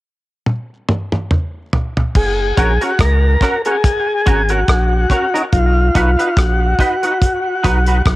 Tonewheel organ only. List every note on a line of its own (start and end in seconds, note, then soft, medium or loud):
2.16 2.84 G#4 loud
2.82 3.00 F#4 medium
3.00 3.62 A#4 loud
3.66 4.53 G#4 loud
4.50 5.37 F#4 medium
5.34 5.42 D#4 medium
5.53 6.40 F4 loud
6.37 8.02 F#4 medium